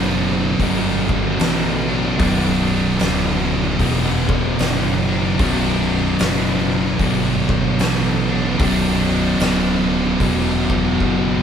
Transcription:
0.00 0.56 F#1 medium
0.00 1.90 B1 medium
0.00 1.86 F#2 medium
0.00 1.89 B2 loud
0.00 1.89 F#3 medium
0.00 1.88 D4 medium
0.59 1.36 G1 loud
0.59 2.19 B1 medium
0.59 2.18 F#2 medium
0.59 2.21 B2 medium
0.59 kick medium
0.59 open hi-hat medium
1.09 kick loud
1.39 2.15 A1 medium
1.39 snare loud
1.39 open hi-hat medium
1.88 2.18 B1 medium
1.88 2.18 F#2 medium
1.88 2.19 B2 medium
1.88 2.20 F#3 medium
1.88 2.20 D4 medium
2.18 2.96 B0 loud
2.18 5.10 B1 medium
2.18 5.06 F#2 medium
2.18 5.09 B2 medium
2.18 5.08 F#3 medium
2.18 5.07 D4 loud
2.18 kick loud
2.18 open hi-hat medium
2.99 3.76 D1 medium
2.99 snare loud
2.99 open hi-hat medium
3.79 4.56 E1 loud
3.79 5.38 B1 medium
3.79 5.38 F#2 medium
3.79 5.40 B2 medium
3.79 kick medium
3.79 open hi-hat medium
4.29 kick loud
4.59 5.35 F#1 loud
4.59 snare loud
4.59 open hi-hat medium
5.07 5.38 B1 medium
5.07 5.38 F#2 medium
5.07 5.39 B2 medium
5.07 5.40 F#3 medium
5.07 5.40 D4 medium
5.39 6.15 B0 loud
5.39 8.31 B1 medium
5.39 8.26 F#2 medium
5.39 8.30 B2 loud
5.39 8.29 F#3 loud
5.39 8.29 D4 medium
5.39 kick loud
5.39 open hi-hat medium
6.19 6.96 F#1 medium
6.19 snare loud
6.19 open hi-hat medium
6.99 7.75 G1 medium
6.99 8.59 B1 medium
6.99 8.58 F#2 medium
6.99 8.61 B2 medium
6.99 kick medium
6.99 open hi-hat medium
7.49 kick loud
7.79 8.55 A1 medium
7.79 snare loud
7.79 open hi-hat medium
8.29 8.59 B1 medium
8.29 8.58 F#2 medium
8.29 8.60 B2 medium
8.29 8.61 F#3 medium
8.29 8.61 D4 medium
8.59 9.36 B0 loud
8.59 11.43 B1 medium
8.59 11.43 F#2 loud
8.59 11.43 B2 loud
8.59 11.43 F#3 medium
8.59 11.43 D4 loud
8.59 kick loud
8.59 open hi-hat medium
9.39 10.15 D1 medium
9.39 snare loud
9.39 open hi-hat medium
10.20 10.96 E1 loud
10.20 11.43 B1 medium
10.20 11.43 F#2 medium
10.20 11.43 B2 medium
10.20 kick medium
10.20 open hi-hat medium
10.70 kick medium
11.00 11.43 F#1 medium
11.00 kick medium

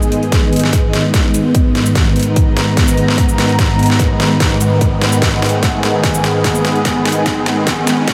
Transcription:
0.00 8.13 G#2 medium
0.00 8.13 D#3 medium
0.00 8.13 G#3 medium
0.00 8.13 B3 medium
0.00 8.13 D#4 medium
0.00 1.94 G#4 medium
0.00 8.13 B4 medium
0.00 8.13 D#5 medium
0.00 riser medium
0.00 shaker soft
0.12 closed hi-hat medium
0.23 closed hi-hat soft
0.32 kick medium
0.32 snare medium
0.32 closed hi-hat medium
0.53 closed hi-hat soft
0.56 closed hi-hat medium
0.59 closed hi-hat medium
0.64 snare soft
0.73 kick medium
0.73 closed hi-hat medium
0.93 snare medium
0.93 closed hi-hat medium
1.14 kick loud
1.14 snare medium
1.14 closed hi-hat medium
1.34 closed hi-hat medium
1.34 shaker medium
1.55 kick medium
1.55 closed hi-hat medium
1.75 snare medium
1.75 closed hi-hat medium
1.86 closed hi-hat soft
1.86 shaker medium
1.95 5.21 A#5 medium
1.95 kick loud
1.95 snare medium
1.95 closed hi-hat medium
2.16 closed hi-hat soft
2.19 closed hi-hat medium
2.23 closed hi-hat medium
2.36 kick loud
2.36 closed hi-hat medium
2.57 snare medium
2.57 closed hi-hat medium
2.77 kick loud
2.77 snare medium
2.77 closed hi-hat medium
2.88 shaker medium
2.97 closed hi-hat medium
3.08 snare medium
3.18 kick medium
3.18 closed hi-hat medium
3.29 shaker medium
3.38 snare medium
3.38 closed hi-hat medium
3.49 closed hi-hat soft
3.59 kick loud
3.59 snare medium
3.59 closed hi-hat medium
3.79 closed hi-hat soft
3.83 closed hi-hat medium
3.86 closed hi-hat medium
3.90 snare medium
3.99 kick loud
3.99 closed hi-hat medium
4.20 snare medium
4.20 closed hi-hat soft
4.40 kick medium
4.40 snare medium
4.40 closed hi-hat medium
4.61 closed hi-hat medium
4.61 shaker medium
4.81 kick medium
4.81 closed hi-hat medium
5.01 snare medium
5.01 closed hi-hat soft
5.12 closed hi-hat soft
5.12 shaker medium
5.22 8.13 G#4 medium
5.22 kick loud
5.22 snare medium
5.22 closed hi-hat medium
5.42 snare medium
5.42 closed hi-hat soft
5.46 closed hi-hat medium
5.49 closed hi-hat medium
5.63 kick loud
5.63 snare medium
5.63 closed hi-hat medium
5.83 snare medium
5.83 closed hi-hat medium
6.04 kick loud
6.04 snare medium
6.04 closed hi-hat medium
6.14 shaker medium
6.24 snare medium
6.24 closed hi-hat medium
6.44 kick medium
6.44 snare medium
6.44 closed hi-hat medium
6.55 shaker medium
6.65 snare medium
6.65 closed hi-hat soft
6.76 closed hi-hat soft
6.85 kick medium
6.85 snare medium
6.85 closed hi-hat medium
7.05 snare medium
7.05 closed hi-hat soft
7.09 closed hi-hat medium
7.12 closed hi-hat medium
7.26 kick loud
7.26 snare medium
7.26 closed hi-hat medium
7.46 snare medium
7.46 closed hi-hat medium
7.67 kick loud
7.67 snare medium
7.67 closed hi-hat medium
7.87 snare medium
7.87 closed hi-hat medium
7.87 shaker medium
8.08 kick loud
8.08 snare medium
8.08 closed hi-hat medium

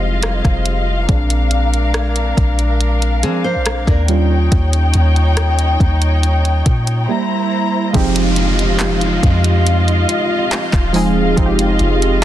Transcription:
0.00 0.42 F1 medium
0.00 1.11 G3 medium
0.00 1.08 G#3 medium
0.00 0.62 C4 medium
0.00 1.05 F4 medium
0.00 1.10 G4 medium
0.00 1.11 G#4 medium
0.00 0.61 C5 medium
0.00 1.05 D#5 medium
0.00 4.05 F5 medium
0.23 cross-stick loud
0.23 closed hi-hat medium
0.45 1.06 F1 loud
0.45 kick medium
0.45 cross-stick medium
0.45 closed hi-hat soft
0.66 closed hi-hat medium
1.08 2.33 A#1 loud
1.08 4.04 G#3 medium
1.08 4.05 C4 medium
1.08 4.06 D4 medium
1.08 4.05 D4 medium
1.08 4.06 A#4 medium
1.08 kick loud
1.08 closed hi-hat medium
1.30 closed hi-hat medium
1.51 closed hi-hat medium
1.74 closed hi-hat soft
1.94 cross-stick loud
1.94 closed hi-hat medium
2.16 closed hi-hat soft
2.37 3.25 A#1 loud
2.37 kick medium
2.37 closed hi-hat medium
2.59 closed hi-hat soft
2.81 closed hi-hat medium
3.02 closed hi-hat soft
3.23 3.57 F3 medium
3.23 3.44 C4 medium
3.23 3.43 G#4 medium
3.23 closed hi-hat medium
3.44 3.85 C5 medium
3.56 3.86 A#1 medium
3.66 cross-stick loud
3.66 closed hi-hat medium
3.87 4.49 D#2 loud
3.87 4.28 D4 medium
3.87 4.28 A#4 medium
3.87 kick medium
3.87 cross-stick medium
3.87 closed hi-hat soft
4.08 4.66 G3 medium
4.08 4.66 C#4 medium
4.08 7.06 D#4 medium
4.08 4.66 F4 medium
4.08 7.06 C#5 medium
4.08 7.06 G5 medium
4.08 closed hi-hat medium
4.52 4.93 D#2 loud
4.52 kick loud
4.52 closed hi-hat medium
4.73 closed hi-hat medium
4.94 5.77 D#2 loud
4.94 closed hi-hat medium
5.16 closed hi-hat soft
5.37 cross-stick loud
5.37 closed hi-hat medium
5.59 closed hi-hat medium
5.80 6.63 D#2 loud
5.80 kick medium
5.80 closed hi-hat medium
6.02 closed hi-hat soft
6.23 closed hi-hat medium
6.45 closed hi-hat soft
6.66 7.07 A#2 loud
6.66 kick medium
6.66 closed hi-hat medium
6.87 closed hi-hat medium
7.08 7.90 G3 medium
7.08 7.91 A#3 medium
7.08 7.93 E4 medium
7.08 7.91 E4 medium
7.08 7.93 C5 medium
7.08 7.93 A#5 medium
7.93 9.19 F1 loud
7.93 9.56 F3 medium
7.93 9.56 G#3 medium
7.93 9.57 C4 medium
7.93 9.57 D#4 medium
7.93 12.24 F4 medium
7.93 9.57 G4 loud
7.93 12.24 D#5 medium
7.93 12.24 F5 medium
7.93 kick loud
7.93 closed hi-hat medium
7.93 downlifter medium
8.16 closed hi-hat medium
8.36 closed hi-hat medium
8.59 closed hi-hat medium
8.80 clap loud
8.80 closed hi-hat medium
9.01 closed hi-hat medium
9.23 10.05 F2 loud
9.23 kick medium
9.23 closed hi-hat medium
9.44 closed hi-hat soft
9.67 closed hi-hat medium
9.88 closed hi-hat soft
10.09 closed hi-hat medium
10.51 clap loud
10.51 closed hi-hat medium
10.73 11.35 D#1 loud
10.73 kick medium
10.73 clap medium
10.73 closed hi-hat soft
10.93 11.34 F3 medium
10.93 11.35 G#3 medium
10.93 11.35 C4 medium
10.93 11.35 D#4 medium
10.93 11.36 G#4 loud
10.93 open hi-hat medium
11.36 11.78 F1 loud
11.36 12.24 F3 medium
11.36 12.24 G#3 medium
11.36 12.24 C4 medium
11.36 12.24 D#4 medium
11.36 11.45 F4 medium
11.36 kick loud
11.36 closed hi-hat medium
11.46 12.24 G4 medium
11.59 closed hi-hat medium
11.79 12.24 F1 loud
11.79 closed hi-hat medium
12.02 closed hi-hat medium

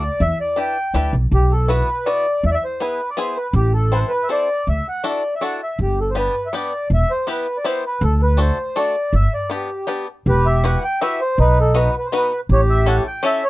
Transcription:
0.00 0.22 D5 medium
0.20 0.32 E2 medium
0.20 0.38 E5 loud
0.40 0.58 D5 medium
0.56 0.76 D4 medium
0.56 0.76 E4 soft
0.56 0.77 G4 soft
0.56 0.77 B4 medium
0.56 1.11 G5 medium
0.94 1.11 D2 medium
0.94 1.14 D4 medium
0.94 1.14 E4 medium
0.94 1.14 G4 medium
0.94 1.14 B4 medium
1.13 1.30 B1 medium
1.32 1.80 B1 medium
1.32 1.53 G4 medium
1.51 1.70 A4 medium
1.68 1.88 B3 medium
1.68 1.88 E4 soft
1.68 1.89 F#4 soft
1.68 2.07 B4 medium
1.68 1.89 B4 medium
2.06 2.25 B3 medium
2.06 2.26 E4 soft
2.06 2.26 F#4 soft
2.06 2.26 B4 medium
2.06 2.45 D5 medium
2.43 2.56 E2 medium
2.43 2.50 E5 medium
2.51 2.55 D5 medium
2.51 2.64 E5 loud
2.65 2.82 C5 medium
2.80 3.00 B3 medium
2.80 3.00 E4 soft
2.80 3.00 G#4 soft
2.80 3.10 B4 medium
2.80 3.00 B4 medium
3.10 3.19 D5 medium
3.17 3.36 B3 medium
3.17 3.37 E4 medium
3.17 3.37 G#4 medium
3.17 3.37 B4 medium
3.17 3.38 C5 medium
3.36 3.53 B4 medium
3.53 4.02 A1 loud
3.53 3.73 G4 medium
3.73 3.92 A4 medium
3.92 4.11 C4 medium
3.92 4.11 E4 soft
3.92 4.11 A4 medium
3.92 3.99 B4 medium
3.92 4.11 C5 medium
4.00 4.07 C5 medium
4.08 4.28 B4 medium
4.23 4.30 E5 medium
4.29 4.48 C4 medium
4.29 4.48 E4 soft
4.29 4.48 A4 medium
4.29 4.48 C5 medium
4.29 4.68 D5 loud
4.67 4.79 D2 medium
4.67 4.87 E5 medium
4.88 5.05 F#5 medium
5.04 5.22 D4 medium
5.04 5.23 E4 soft
5.04 5.22 F#4 soft
5.04 5.23 A4 medium
5.08 5.34 D5 medium
5.35 5.43 E5 medium
5.41 5.60 D4 medium
5.41 5.60 E4 soft
5.41 5.60 F#4 medium
5.41 5.60 A4 medium
5.41 5.61 F#5 medium
5.63 5.78 E5 medium
5.79 6.27 G1 medium
5.79 5.99 G4 medium
6.00 6.10 A4 medium
6.10 6.16 C5 medium
6.15 6.34 B3 medium
6.15 6.35 D4 soft
6.15 6.35 G4 soft
6.15 6.35 B4 medium
6.15 6.48 B4 medium
6.46 6.53 E5 medium
6.53 6.72 B3 medium
6.53 6.72 D4 soft
6.53 6.72 G4 soft
6.53 6.73 B4 medium
6.53 6.88 D5 medium
6.90 7.02 E1 medium
6.90 7.11 E5 medium
7.11 7.28 C5 medium
7.27 7.46 B3 medium
7.27 7.46 E4 medium
7.27 7.47 G4 medium
7.27 7.46 B4 medium
7.27 7.58 B4 medium
7.57 7.65 D5 medium
7.64 7.83 B3 medium
7.64 7.83 E4 medium
7.64 7.84 G4 medium
7.64 7.84 B4 medium
7.64 7.85 C5 medium
7.86 8.03 B4 medium
8.01 8.49 D2 loud
8.01 8.22 A4 medium
8.22 8.40 B4 medium
8.37 8.57 A3 medium
8.37 8.57 D4 medium
8.37 8.57 F#4 medium
8.37 8.57 A4 medium
8.37 8.78 C5 medium
8.76 8.94 A3 medium
8.76 8.95 D4 medium
8.76 8.95 F#4 medium
8.76 8.95 A4 medium
8.76 9.15 D5 medium
9.13 9.25 G1 medium
9.13 9.33 E5 medium
9.34 9.51 D5 medium
9.50 9.69 B3 medium
9.50 9.69 D4 soft
9.50 9.70 G4 soft
9.50 9.69 B4 medium
9.55 10.06 G4 medium
9.87 10.07 B3 soft
9.87 10.07 D4 medium
9.87 10.07 G4 medium
9.87 10.07 B4 medium
10.26 10.75 E1 medium
10.26 10.79 G4 medium
10.26 10.47 B4 medium
10.46 10.64 E5 medium
10.64 10.83 E4 medium
10.64 10.82 F#4 soft
10.64 10.83 G4 medium
10.64 10.83 B4 medium
10.64 10.84 F#5 medium
10.84 11.00 G5 medium
11.01 11.20 E4 medium
11.01 11.20 F#4 medium
11.01 11.20 G4 medium
11.01 11.21 B4 medium
11.01 11.20 E5 loud
11.21 11.39 C5 medium
11.38 11.86 B1 medium
11.38 11.91 D#4 medium
11.38 11.59 B4 loud
11.61 11.77 A4 medium
11.74 11.94 B3 medium
11.74 11.94 D#4 medium
11.74 11.94 F#4 soft
11.74 11.95 B4 medium
11.74 11.96 B4 medium
11.98 12.08 B4 medium
12.05 12.12 C5 medium
12.12 12.31 B3 medium
12.12 12.31 D#4 medium
12.12 12.32 F#4 medium
12.12 12.32 B4 medium
12.12 12.40 B4 medium
12.49 12.98 A1 medium
12.49 13.03 G4 medium
12.49 12.61 C#5 medium
12.70 12.86 E5 loud
12.86 13.05 C#4 medium
12.86 13.05 E4 medium
12.86 13.06 G4 medium
12.86 13.06 A4 medium
12.86 12.96 F#5 medium
13.07 13.25 G5 medium
13.23 13.42 C#4 medium
13.23 13.42 E4 medium
13.23 13.43 G4 medium
13.23 13.43 A4 medium
13.23 13.44 E5 loud
13.44 13.50 C#5 medium

